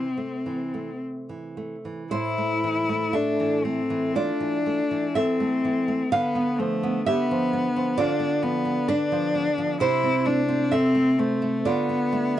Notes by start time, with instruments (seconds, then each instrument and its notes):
Already playing: nylon-string guitar C3, cello C4
0.17 nylon-string guitar A3
0.46 nylon-string guitar E3
0.74 nylon-string guitar A3
1.29 nylon-string guitar E3
1.57 nylon-string guitar A3
1.85 nylon-string guitar E3
2.11 nylon-string guitar A2 E4 C5, cello E4
2.38 nylon-string guitar A3
2.64 nylon-string guitar E3
2.89 nylon-string guitar A3
3.13 cello D4, nylon-string guitar A4 E5
3.40 nylon-string guitar E3
3.65 nylon-string guitar A3, cello C4
3.90 nylon-string guitar E3
4.15 nylon-string guitar A3 F4 D5, cello D4
4.40 nylon-string guitar E3
4.66 nylon-string guitar A3
4.91 nylon-string guitar E3
5.15 cello C4, nylon-string guitar A4 E5
5.40 nylon-string guitar A3
5.65 nylon-string guitar E3
5.88 nylon-string guitar A3
6.11 nylon-string guitar D3 B4 F5, cello B3
6.35 nylon-string guitar B3
6.58 nylon-string guitar F3, cello A3
6.83 nylon-string guitar B3
7.06 cello B3, nylon-string guitar G4 E5
7.31 nylon-string guitar F3
7.53 nylon-string guitar B3
7.76 nylon-string guitar F3
7.98 nylon-string guitar D3 F4 D5, cello D4
8.20 nylon-string guitar B3
8.43 nylon-string guitar F3, cello B3
8.65 nylon-string guitar B3
8.88 cello D4, nylon-string guitar D4 B4
9.12 nylon-string guitar F3
9.35 nylon-string guitar B3
9.58 nylon-string guitar F3
9.80 nylon-string guitar C3 E4 C5, cello E4
10.03 nylon-string guitar C4
10.26 nylon-string guitar A3, cello D4
10.49 nylon-string guitar C4
10.72 cello C4, nylon-string guitar A4 E5
10.95 nylon-string guitar A3
11.19 cello A3, nylon-string guitar C4
11.42 nylon-string guitar A3
11.65 nylon-string guitar D3 F4 D5, cello B3
11.89 nylon-string guitar B3
12.13 nylon-string guitar A3